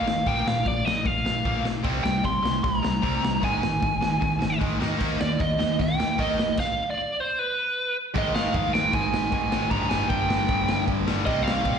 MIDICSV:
0, 0, Header, 1, 5, 480
1, 0, Start_track
1, 0, Tempo, 394477
1, 325, Time_signature, 4, 2, 24, 8
1, 8004, Tempo, 390625
1, 14405, End_track
2, 0, Start_track
2, 0, Title_t, "Lead electric guitar"
2, 0, Program_c, 0, 29
2, 0, Note_on_c, 0, 77, 90
2, 335, Note_off_c, 0, 77, 0
2, 339, Note_on_c, 0, 79, 103
2, 575, Note_off_c, 0, 79, 0
2, 575, Note_on_c, 0, 77, 88
2, 821, Note_off_c, 0, 77, 0
2, 821, Note_on_c, 0, 74, 88
2, 1035, Note_off_c, 0, 74, 0
2, 1035, Note_on_c, 0, 75, 84
2, 1293, Note_off_c, 0, 75, 0
2, 1293, Note_on_c, 0, 77, 85
2, 2012, Note_off_c, 0, 77, 0
2, 2477, Note_on_c, 0, 79, 78
2, 2707, Note_off_c, 0, 79, 0
2, 2742, Note_on_c, 0, 84, 105
2, 3209, Note_off_c, 0, 84, 0
2, 3214, Note_on_c, 0, 82, 102
2, 4190, Note_on_c, 0, 80, 87
2, 4201, Note_off_c, 0, 82, 0
2, 5570, Note_off_c, 0, 80, 0
2, 6336, Note_on_c, 0, 74, 88
2, 6555, Note_off_c, 0, 74, 0
2, 6586, Note_on_c, 0, 75, 102
2, 7022, Note_off_c, 0, 75, 0
2, 7075, Note_on_c, 0, 79, 112
2, 7545, Note_on_c, 0, 75, 90
2, 7552, Note_off_c, 0, 79, 0
2, 7979, Note_off_c, 0, 75, 0
2, 8030, Note_on_c, 0, 77, 110
2, 8388, Note_off_c, 0, 77, 0
2, 8406, Note_on_c, 0, 74, 93
2, 8757, Note_off_c, 0, 74, 0
2, 8770, Note_on_c, 0, 72, 92
2, 9001, Note_off_c, 0, 72, 0
2, 9001, Note_on_c, 0, 71, 79
2, 9706, Note_off_c, 0, 71, 0
2, 9973, Note_on_c, 0, 75, 92
2, 10176, Note_off_c, 0, 75, 0
2, 10176, Note_on_c, 0, 77, 85
2, 10420, Note_off_c, 0, 77, 0
2, 10441, Note_on_c, 0, 77, 92
2, 10650, Note_off_c, 0, 77, 0
2, 10650, Note_on_c, 0, 79, 94
2, 10897, Note_off_c, 0, 79, 0
2, 10910, Note_on_c, 0, 80, 108
2, 11381, Note_off_c, 0, 80, 0
2, 11395, Note_on_c, 0, 80, 98
2, 11830, Note_off_c, 0, 80, 0
2, 11854, Note_on_c, 0, 82, 119
2, 12074, Note_off_c, 0, 82, 0
2, 12074, Note_on_c, 0, 80, 97
2, 12319, Note_off_c, 0, 80, 0
2, 12324, Note_on_c, 0, 79, 96
2, 13236, Note_off_c, 0, 79, 0
2, 13753, Note_on_c, 0, 75, 87
2, 13964, Note_off_c, 0, 75, 0
2, 13964, Note_on_c, 0, 77, 100
2, 14405, Note_off_c, 0, 77, 0
2, 14405, End_track
3, 0, Start_track
3, 0, Title_t, "Overdriven electric guitar"
3, 0, Program_c, 1, 29
3, 85, Note_on_c, 1, 51, 72
3, 94, Note_on_c, 1, 58, 75
3, 302, Note_off_c, 1, 51, 0
3, 306, Note_off_c, 1, 58, 0
3, 318, Note_on_c, 1, 46, 85
3, 326, Note_on_c, 1, 53, 84
3, 329, Note_on_c, 1, 58, 105
3, 548, Note_off_c, 1, 46, 0
3, 552, Note_off_c, 1, 53, 0
3, 553, Note_off_c, 1, 58, 0
3, 568, Note_on_c, 1, 46, 77
3, 571, Note_on_c, 1, 53, 68
3, 778, Note_off_c, 1, 46, 0
3, 781, Note_off_c, 1, 53, 0
3, 793, Note_on_c, 1, 46, 80
3, 796, Note_on_c, 1, 53, 83
3, 1016, Note_off_c, 1, 46, 0
3, 1018, Note_off_c, 1, 53, 0
3, 1048, Note_on_c, 1, 46, 71
3, 1050, Note_on_c, 1, 53, 84
3, 1261, Note_off_c, 1, 53, 0
3, 1264, Note_off_c, 1, 46, 0
3, 1275, Note_on_c, 1, 53, 83
3, 1277, Note_on_c, 1, 46, 70
3, 1498, Note_off_c, 1, 53, 0
3, 1499, Note_off_c, 1, 46, 0
3, 1521, Note_on_c, 1, 46, 69
3, 1528, Note_on_c, 1, 53, 74
3, 1741, Note_off_c, 1, 46, 0
3, 1745, Note_off_c, 1, 53, 0
3, 1766, Note_on_c, 1, 46, 81
3, 1776, Note_on_c, 1, 53, 95
3, 1776, Note_on_c, 1, 58, 87
3, 1990, Note_off_c, 1, 46, 0
3, 1996, Note_off_c, 1, 53, 0
3, 1999, Note_off_c, 1, 58, 0
3, 2005, Note_on_c, 1, 46, 72
3, 2011, Note_on_c, 1, 53, 73
3, 2220, Note_off_c, 1, 46, 0
3, 2225, Note_on_c, 1, 48, 84
3, 2227, Note_off_c, 1, 53, 0
3, 2240, Note_on_c, 1, 55, 87
3, 2240, Note_on_c, 1, 60, 93
3, 2457, Note_off_c, 1, 48, 0
3, 2461, Note_off_c, 1, 55, 0
3, 2471, Note_off_c, 1, 60, 0
3, 2471, Note_on_c, 1, 48, 65
3, 2476, Note_on_c, 1, 55, 85
3, 2697, Note_off_c, 1, 48, 0
3, 2699, Note_off_c, 1, 55, 0
3, 2719, Note_on_c, 1, 48, 70
3, 2727, Note_on_c, 1, 55, 83
3, 2939, Note_off_c, 1, 55, 0
3, 2941, Note_off_c, 1, 48, 0
3, 2953, Note_on_c, 1, 55, 81
3, 2956, Note_on_c, 1, 48, 65
3, 3178, Note_off_c, 1, 55, 0
3, 3180, Note_off_c, 1, 48, 0
3, 3210, Note_on_c, 1, 48, 66
3, 3212, Note_on_c, 1, 55, 90
3, 3422, Note_off_c, 1, 48, 0
3, 3427, Note_off_c, 1, 55, 0
3, 3436, Note_on_c, 1, 48, 66
3, 3443, Note_on_c, 1, 55, 74
3, 3660, Note_off_c, 1, 48, 0
3, 3663, Note_off_c, 1, 55, 0
3, 3676, Note_on_c, 1, 48, 83
3, 3681, Note_on_c, 1, 60, 101
3, 3682, Note_on_c, 1, 55, 89
3, 3902, Note_off_c, 1, 55, 0
3, 3903, Note_off_c, 1, 48, 0
3, 3912, Note_off_c, 1, 60, 0
3, 3917, Note_on_c, 1, 55, 74
3, 3918, Note_on_c, 1, 48, 70
3, 4140, Note_off_c, 1, 48, 0
3, 4140, Note_off_c, 1, 55, 0
3, 4155, Note_on_c, 1, 44, 94
3, 4159, Note_on_c, 1, 51, 97
3, 4164, Note_on_c, 1, 56, 97
3, 4378, Note_off_c, 1, 44, 0
3, 4381, Note_off_c, 1, 51, 0
3, 4393, Note_off_c, 1, 56, 0
3, 4393, Note_on_c, 1, 44, 72
3, 4396, Note_on_c, 1, 51, 83
3, 4608, Note_off_c, 1, 44, 0
3, 4609, Note_off_c, 1, 51, 0
3, 4623, Note_on_c, 1, 44, 83
3, 4624, Note_on_c, 1, 51, 79
3, 4852, Note_off_c, 1, 44, 0
3, 4853, Note_off_c, 1, 51, 0
3, 4875, Note_on_c, 1, 44, 62
3, 4881, Note_on_c, 1, 51, 67
3, 5094, Note_off_c, 1, 44, 0
3, 5101, Note_off_c, 1, 51, 0
3, 5109, Note_on_c, 1, 44, 80
3, 5117, Note_on_c, 1, 51, 81
3, 5323, Note_off_c, 1, 44, 0
3, 5330, Note_off_c, 1, 51, 0
3, 5338, Note_on_c, 1, 44, 65
3, 5345, Note_on_c, 1, 51, 69
3, 5563, Note_off_c, 1, 44, 0
3, 5573, Note_off_c, 1, 51, 0
3, 5577, Note_on_c, 1, 44, 77
3, 5594, Note_on_c, 1, 51, 81
3, 5596, Note_on_c, 1, 56, 99
3, 5818, Note_off_c, 1, 44, 0
3, 5818, Note_off_c, 1, 51, 0
3, 5828, Note_off_c, 1, 56, 0
3, 5832, Note_on_c, 1, 51, 94
3, 5834, Note_on_c, 1, 58, 85
3, 5837, Note_on_c, 1, 63, 96
3, 6041, Note_off_c, 1, 51, 0
3, 6051, Note_off_c, 1, 63, 0
3, 6055, Note_off_c, 1, 58, 0
3, 6055, Note_on_c, 1, 51, 86
3, 6066, Note_on_c, 1, 63, 103
3, 6069, Note_on_c, 1, 58, 106
3, 6297, Note_off_c, 1, 51, 0
3, 6302, Note_off_c, 1, 63, 0
3, 6304, Note_off_c, 1, 58, 0
3, 6313, Note_on_c, 1, 51, 72
3, 6320, Note_on_c, 1, 58, 86
3, 6536, Note_off_c, 1, 51, 0
3, 6539, Note_off_c, 1, 58, 0
3, 6557, Note_on_c, 1, 51, 80
3, 6564, Note_on_c, 1, 58, 77
3, 6777, Note_off_c, 1, 51, 0
3, 6781, Note_off_c, 1, 58, 0
3, 6797, Note_on_c, 1, 51, 65
3, 6804, Note_on_c, 1, 58, 78
3, 7017, Note_off_c, 1, 51, 0
3, 7020, Note_off_c, 1, 58, 0
3, 7043, Note_on_c, 1, 51, 88
3, 7049, Note_on_c, 1, 58, 79
3, 7259, Note_off_c, 1, 51, 0
3, 7262, Note_off_c, 1, 58, 0
3, 7295, Note_on_c, 1, 51, 62
3, 7298, Note_on_c, 1, 58, 73
3, 7505, Note_off_c, 1, 51, 0
3, 7506, Note_off_c, 1, 58, 0
3, 7524, Note_on_c, 1, 51, 90
3, 7531, Note_on_c, 1, 58, 92
3, 7541, Note_on_c, 1, 63, 100
3, 7748, Note_off_c, 1, 51, 0
3, 7752, Note_off_c, 1, 58, 0
3, 7757, Note_off_c, 1, 63, 0
3, 7775, Note_on_c, 1, 58, 73
3, 7779, Note_on_c, 1, 51, 71
3, 7984, Note_off_c, 1, 58, 0
3, 7986, Note_off_c, 1, 51, 0
3, 9931, Note_on_c, 1, 44, 96
3, 9951, Note_on_c, 1, 51, 110
3, 9963, Note_on_c, 1, 56, 111
3, 11597, Note_off_c, 1, 44, 0
3, 11605, Note_off_c, 1, 56, 0
3, 11607, Note_off_c, 1, 51, 0
3, 11620, Note_on_c, 1, 56, 82
3, 11639, Note_on_c, 1, 51, 78
3, 11653, Note_on_c, 1, 44, 71
3, 11841, Note_off_c, 1, 56, 0
3, 11850, Note_off_c, 1, 51, 0
3, 11855, Note_off_c, 1, 44, 0
3, 11860, Note_on_c, 1, 43, 94
3, 11885, Note_on_c, 1, 50, 93
3, 11895, Note_on_c, 1, 55, 108
3, 13517, Note_off_c, 1, 43, 0
3, 13523, Note_off_c, 1, 55, 0
3, 13528, Note_on_c, 1, 55, 85
3, 13530, Note_off_c, 1, 50, 0
3, 13547, Note_on_c, 1, 50, 93
3, 13561, Note_on_c, 1, 43, 69
3, 13757, Note_off_c, 1, 50, 0
3, 13762, Note_on_c, 1, 48, 92
3, 13769, Note_off_c, 1, 43, 0
3, 13772, Note_off_c, 1, 55, 0
3, 13777, Note_on_c, 1, 55, 103
3, 13794, Note_on_c, 1, 60, 118
3, 14405, Note_off_c, 1, 48, 0
3, 14405, Note_off_c, 1, 55, 0
3, 14405, Note_off_c, 1, 60, 0
3, 14405, End_track
4, 0, Start_track
4, 0, Title_t, "Fretless electric bass"
4, 0, Program_c, 2, 35
4, 0, Note_on_c, 2, 32, 102
4, 256, Note_off_c, 2, 32, 0
4, 328, Note_on_c, 2, 34, 91
4, 532, Note_off_c, 2, 34, 0
4, 565, Note_on_c, 2, 34, 90
4, 771, Note_off_c, 2, 34, 0
4, 808, Note_on_c, 2, 34, 104
4, 1013, Note_off_c, 2, 34, 0
4, 1038, Note_on_c, 2, 34, 81
4, 1248, Note_off_c, 2, 34, 0
4, 1289, Note_on_c, 2, 34, 92
4, 1494, Note_off_c, 2, 34, 0
4, 1518, Note_on_c, 2, 34, 93
4, 1728, Note_off_c, 2, 34, 0
4, 1775, Note_on_c, 2, 34, 96
4, 2183, Note_off_c, 2, 34, 0
4, 2250, Note_on_c, 2, 36, 82
4, 2455, Note_off_c, 2, 36, 0
4, 2482, Note_on_c, 2, 36, 89
4, 2691, Note_off_c, 2, 36, 0
4, 2730, Note_on_c, 2, 36, 95
4, 2935, Note_off_c, 2, 36, 0
4, 2966, Note_on_c, 2, 36, 87
4, 3173, Note_off_c, 2, 36, 0
4, 3218, Note_on_c, 2, 36, 82
4, 3420, Note_off_c, 2, 36, 0
4, 3469, Note_on_c, 2, 36, 85
4, 3666, Note_off_c, 2, 36, 0
4, 3695, Note_on_c, 2, 36, 98
4, 4103, Note_off_c, 2, 36, 0
4, 4177, Note_on_c, 2, 32, 99
4, 4379, Note_off_c, 2, 32, 0
4, 4418, Note_on_c, 2, 32, 92
4, 4620, Note_off_c, 2, 32, 0
4, 4656, Note_on_c, 2, 32, 93
4, 4858, Note_off_c, 2, 32, 0
4, 4903, Note_on_c, 2, 32, 88
4, 5102, Note_off_c, 2, 32, 0
4, 5135, Note_on_c, 2, 32, 86
4, 5337, Note_off_c, 2, 32, 0
4, 5388, Note_on_c, 2, 32, 86
4, 5584, Note_off_c, 2, 32, 0
4, 5621, Note_on_c, 2, 32, 104
4, 5820, Note_off_c, 2, 32, 0
4, 5851, Note_on_c, 2, 39, 96
4, 6054, Note_off_c, 2, 39, 0
4, 6101, Note_on_c, 2, 39, 90
4, 6300, Note_off_c, 2, 39, 0
4, 6335, Note_on_c, 2, 39, 89
4, 6536, Note_off_c, 2, 39, 0
4, 6580, Note_on_c, 2, 39, 105
4, 6779, Note_off_c, 2, 39, 0
4, 6818, Note_on_c, 2, 39, 90
4, 7017, Note_off_c, 2, 39, 0
4, 7054, Note_on_c, 2, 39, 91
4, 7254, Note_off_c, 2, 39, 0
4, 7285, Note_on_c, 2, 39, 88
4, 7489, Note_off_c, 2, 39, 0
4, 7533, Note_on_c, 2, 32, 92
4, 7937, Note_off_c, 2, 32, 0
4, 9943, Note_on_c, 2, 32, 86
4, 10324, Note_off_c, 2, 32, 0
4, 10424, Note_on_c, 2, 41, 100
4, 10612, Note_off_c, 2, 41, 0
4, 10657, Note_on_c, 2, 32, 89
4, 10848, Note_off_c, 2, 32, 0
4, 10898, Note_on_c, 2, 32, 97
4, 11088, Note_off_c, 2, 32, 0
4, 11132, Note_on_c, 2, 32, 101
4, 11325, Note_off_c, 2, 32, 0
4, 11382, Note_on_c, 2, 44, 93
4, 11571, Note_off_c, 2, 44, 0
4, 11628, Note_on_c, 2, 32, 103
4, 11860, Note_off_c, 2, 32, 0
4, 11860, Note_on_c, 2, 31, 101
4, 12049, Note_off_c, 2, 31, 0
4, 12105, Note_on_c, 2, 31, 86
4, 12292, Note_off_c, 2, 31, 0
4, 12333, Note_on_c, 2, 31, 108
4, 12525, Note_off_c, 2, 31, 0
4, 12573, Note_on_c, 2, 31, 91
4, 12764, Note_off_c, 2, 31, 0
4, 12812, Note_on_c, 2, 31, 101
4, 13196, Note_off_c, 2, 31, 0
4, 13289, Note_on_c, 2, 31, 103
4, 13481, Note_off_c, 2, 31, 0
4, 13540, Note_on_c, 2, 31, 99
4, 13770, Note_on_c, 2, 36, 102
4, 13789, Note_off_c, 2, 31, 0
4, 14154, Note_off_c, 2, 36, 0
4, 14239, Note_on_c, 2, 46, 104
4, 14405, Note_off_c, 2, 46, 0
4, 14405, End_track
5, 0, Start_track
5, 0, Title_t, "Drums"
5, 92, Note_on_c, 9, 38, 102
5, 214, Note_off_c, 9, 38, 0
5, 324, Note_on_c, 9, 36, 101
5, 324, Note_on_c, 9, 46, 52
5, 445, Note_off_c, 9, 46, 0
5, 446, Note_off_c, 9, 36, 0
5, 580, Note_on_c, 9, 38, 115
5, 701, Note_off_c, 9, 38, 0
5, 801, Note_on_c, 9, 46, 52
5, 806, Note_on_c, 9, 36, 106
5, 922, Note_off_c, 9, 46, 0
5, 927, Note_off_c, 9, 36, 0
5, 1066, Note_on_c, 9, 38, 112
5, 1187, Note_off_c, 9, 38, 0
5, 1282, Note_on_c, 9, 46, 57
5, 1285, Note_on_c, 9, 36, 109
5, 1404, Note_off_c, 9, 46, 0
5, 1407, Note_off_c, 9, 36, 0
5, 1536, Note_on_c, 9, 38, 101
5, 1658, Note_off_c, 9, 38, 0
5, 1768, Note_on_c, 9, 36, 116
5, 1769, Note_on_c, 9, 46, 57
5, 1890, Note_off_c, 9, 36, 0
5, 1891, Note_off_c, 9, 46, 0
5, 2012, Note_on_c, 9, 38, 99
5, 2134, Note_off_c, 9, 38, 0
5, 2241, Note_on_c, 9, 49, 92
5, 2247, Note_on_c, 9, 36, 114
5, 2362, Note_off_c, 9, 49, 0
5, 2368, Note_off_c, 9, 36, 0
5, 2502, Note_on_c, 9, 38, 120
5, 2624, Note_off_c, 9, 38, 0
5, 2733, Note_on_c, 9, 36, 114
5, 2737, Note_on_c, 9, 46, 57
5, 2854, Note_off_c, 9, 36, 0
5, 2859, Note_off_c, 9, 46, 0
5, 2987, Note_on_c, 9, 38, 100
5, 3109, Note_off_c, 9, 38, 0
5, 3214, Note_on_c, 9, 36, 111
5, 3214, Note_on_c, 9, 46, 60
5, 3336, Note_off_c, 9, 36, 0
5, 3336, Note_off_c, 9, 46, 0
5, 3462, Note_on_c, 9, 38, 120
5, 3583, Note_off_c, 9, 38, 0
5, 3688, Note_on_c, 9, 46, 58
5, 3692, Note_on_c, 9, 36, 107
5, 3809, Note_off_c, 9, 46, 0
5, 3814, Note_off_c, 9, 36, 0
5, 3949, Note_on_c, 9, 38, 110
5, 4071, Note_off_c, 9, 38, 0
5, 4173, Note_on_c, 9, 46, 59
5, 4175, Note_on_c, 9, 36, 106
5, 4295, Note_off_c, 9, 46, 0
5, 4297, Note_off_c, 9, 36, 0
5, 4420, Note_on_c, 9, 38, 117
5, 4541, Note_off_c, 9, 38, 0
5, 4648, Note_on_c, 9, 46, 50
5, 4655, Note_on_c, 9, 36, 105
5, 4770, Note_off_c, 9, 46, 0
5, 4776, Note_off_c, 9, 36, 0
5, 4897, Note_on_c, 9, 38, 108
5, 5019, Note_off_c, 9, 38, 0
5, 5136, Note_on_c, 9, 36, 109
5, 5136, Note_on_c, 9, 46, 51
5, 5258, Note_off_c, 9, 36, 0
5, 5258, Note_off_c, 9, 46, 0
5, 5378, Note_on_c, 9, 38, 110
5, 5500, Note_off_c, 9, 38, 0
5, 5607, Note_on_c, 9, 46, 58
5, 5616, Note_on_c, 9, 36, 106
5, 5729, Note_off_c, 9, 46, 0
5, 5737, Note_off_c, 9, 36, 0
5, 5865, Note_on_c, 9, 38, 105
5, 5986, Note_off_c, 9, 38, 0
5, 6088, Note_on_c, 9, 49, 99
5, 6095, Note_on_c, 9, 36, 106
5, 6210, Note_off_c, 9, 49, 0
5, 6217, Note_off_c, 9, 36, 0
5, 6337, Note_on_c, 9, 38, 122
5, 6459, Note_off_c, 9, 38, 0
5, 6565, Note_on_c, 9, 46, 57
5, 6574, Note_on_c, 9, 36, 109
5, 6686, Note_off_c, 9, 46, 0
5, 6696, Note_off_c, 9, 36, 0
5, 6819, Note_on_c, 9, 38, 103
5, 6941, Note_off_c, 9, 38, 0
5, 7052, Note_on_c, 9, 46, 62
5, 7054, Note_on_c, 9, 36, 106
5, 7174, Note_off_c, 9, 46, 0
5, 7176, Note_off_c, 9, 36, 0
5, 7301, Note_on_c, 9, 38, 102
5, 7423, Note_off_c, 9, 38, 0
5, 7527, Note_on_c, 9, 46, 60
5, 7532, Note_on_c, 9, 36, 108
5, 7649, Note_off_c, 9, 46, 0
5, 7654, Note_off_c, 9, 36, 0
5, 7779, Note_on_c, 9, 38, 99
5, 7901, Note_off_c, 9, 38, 0
5, 7998, Note_on_c, 9, 57, 105
5, 8009, Note_on_c, 9, 36, 98
5, 8120, Note_off_c, 9, 57, 0
5, 8132, Note_off_c, 9, 36, 0
5, 9945, Note_on_c, 9, 36, 118
5, 9948, Note_on_c, 9, 49, 70
5, 10068, Note_off_c, 9, 36, 0
5, 10070, Note_off_c, 9, 49, 0
5, 10190, Note_on_c, 9, 38, 116
5, 10313, Note_off_c, 9, 38, 0
5, 10412, Note_on_c, 9, 49, 61
5, 10421, Note_on_c, 9, 36, 112
5, 10535, Note_off_c, 9, 49, 0
5, 10543, Note_off_c, 9, 36, 0
5, 10674, Note_on_c, 9, 38, 117
5, 10796, Note_off_c, 9, 38, 0
5, 10895, Note_on_c, 9, 49, 73
5, 10900, Note_on_c, 9, 36, 126
5, 11018, Note_off_c, 9, 49, 0
5, 11023, Note_off_c, 9, 36, 0
5, 11149, Note_on_c, 9, 38, 116
5, 11272, Note_off_c, 9, 38, 0
5, 11372, Note_on_c, 9, 49, 66
5, 11378, Note_on_c, 9, 36, 116
5, 11495, Note_off_c, 9, 49, 0
5, 11501, Note_off_c, 9, 36, 0
5, 11623, Note_on_c, 9, 38, 116
5, 11745, Note_off_c, 9, 38, 0
5, 11853, Note_on_c, 9, 49, 71
5, 11855, Note_on_c, 9, 36, 115
5, 11976, Note_off_c, 9, 49, 0
5, 11978, Note_off_c, 9, 36, 0
5, 12098, Note_on_c, 9, 38, 126
5, 12221, Note_off_c, 9, 38, 0
5, 12330, Note_on_c, 9, 49, 64
5, 12335, Note_on_c, 9, 36, 112
5, 12453, Note_off_c, 9, 49, 0
5, 12457, Note_off_c, 9, 36, 0
5, 12582, Note_on_c, 9, 38, 116
5, 12705, Note_off_c, 9, 38, 0
5, 12804, Note_on_c, 9, 49, 60
5, 12811, Note_on_c, 9, 36, 120
5, 12927, Note_off_c, 9, 49, 0
5, 12934, Note_off_c, 9, 36, 0
5, 13052, Note_on_c, 9, 38, 113
5, 13175, Note_off_c, 9, 38, 0
5, 13286, Note_on_c, 9, 49, 57
5, 13288, Note_on_c, 9, 36, 108
5, 13409, Note_off_c, 9, 49, 0
5, 13411, Note_off_c, 9, 36, 0
5, 13533, Note_on_c, 9, 38, 116
5, 13656, Note_off_c, 9, 38, 0
5, 13762, Note_on_c, 9, 49, 69
5, 13767, Note_on_c, 9, 36, 124
5, 13885, Note_off_c, 9, 49, 0
5, 13890, Note_off_c, 9, 36, 0
5, 14024, Note_on_c, 9, 38, 121
5, 14147, Note_off_c, 9, 38, 0
5, 14236, Note_on_c, 9, 49, 61
5, 14242, Note_on_c, 9, 36, 118
5, 14359, Note_off_c, 9, 49, 0
5, 14365, Note_off_c, 9, 36, 0
5, 14405, End_track
0, 0, End_of_file